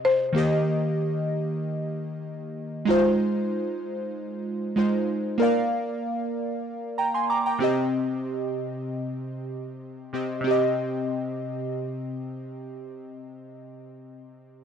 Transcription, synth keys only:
0.33 2.82 D#3 medium
0.33 2.83 A#3 medium
0.33 2.84 G4 medium
0.38 2.85 D#5 medium
2.85 4.72 G#3 medium
2.85 4.73 D#4 medium
2.85 4.74 F4 medium
2.90 4.75 C5 medium
4.76 5.40 G#3 medium
4.76 5.40 D#4 medium
4.76 5.41 F4 medium
4.76 5.41 C5 medium
5.38 7.56 A#3 medium
5.38 7.57 A#4 medium
5.38 7.58 D5 medium
5.43 7.59 F5 medium
6.98 7.14 G5 medium
6.98 7.14 A#5 medium
7.14 7.29 G#5 medium
7.14 7.29 C6 medium
7.30 7.45 A#5 medium
7.30 7.45 D6 medium
7.46 7.76 G5 medium
7.46 7.76 A#5 medium
7.59 10.09 C3 medium
7.59 10.09 C4 medium
7.59 10.10 G4 medium
7.64 10.11 D#5 medium
10.13 10.39 C3 medium
10.13 10.43 C4 medium
10.13 10.46 G4 soft
10.13 10.46 D#5 medium
10.41 13.58 C3 medium
10.41 13.61 C4 medium
10.47 13.65 G4 medium
10.47 13.68 D#5 medium

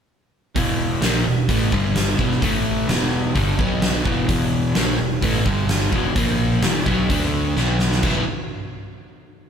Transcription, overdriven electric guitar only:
0.55 1.01 E2 medium
0.55 1.01 B2 loud
0.55 1.02 E3 medium
1.02 1.25 A#2 medium
1.02 1.25 F3 medium
1.02 1.26 A#3 medium
1.26 1.44 E2 medium
1.26 1.45 B2 medium
1.49 1.71 A2 medium
1.49 1.72 E3 medium
1.49 1.72 A3 medium
1.72 2.18 G2 medium
1.72 2.18 D3 medium
1.72 2.19 G3 medium
2.18 2.41 E2 medium
2.18 2.41 B2 medium
2.18 2.41 E3 loud
2.42 2.88 A2 medium
2.42 2.88 E3 medium
2.42 2.89 A3 loud
2.89 3.34 E2 medium
2.89 3.35 B2 medium
2.89 3.35 E3 medium
3.35 3.58 G2 medium
3.35 3.58 D3 medium
3.35 3.58 G3 loud
3.58 4.04 B2 medium
3.58 4.05 F#3 medium
3.58 4.05 B3 loud
4.04 4.27 E2 medium
4.04 4.28 B2 medium
4.04 4.28 E3 loud
4.28 4.75 E2 loud
4.28 4.75 B2 loud
4.28 4.75 E3 loud
4.75 4.98 A#2 medium
4.75 4.98 F3 medium
4.75 4.99 A#3 medium
4.99 5.18 E2 medium
4.99 5.18 B2 medium
5.22 5.45 A2 medium
5.22 5.45 E3 medium
5.22 5.46 A3 loud
5.45 5.92 G2 medium
5.45 5.92 D3 medium
5.45 5.92 G3 medium
5.92 6.15 E2 medium
5.92 6.15 B2 loud
5.92 6.16 E3 medium
6.16 6.62 A#2 medium
6.16 6.62 F3 medium
6.16 6.63 A#3 loud
6.62 6.85 E2 medium
6.62 6.85 B2 medium
6.62 6.86 E3 medium
6.86 7.09 B2 medium
6.86 7.09 F#3 medium
6.86 7.10 B3 medium
7.10 7.56 D3 medium
7.10 7.56 A3 medium
7.10 7.57 D4 loud
7.57 8.03 B2 medium
7.57 8.03 F#3 medium
7.57 8.03 B3 medium
8.03 8.22 E3 medium
8.03 8.22 G3 medium
8.03 8.23 B3 loud
8.03 8.23 E4 loud

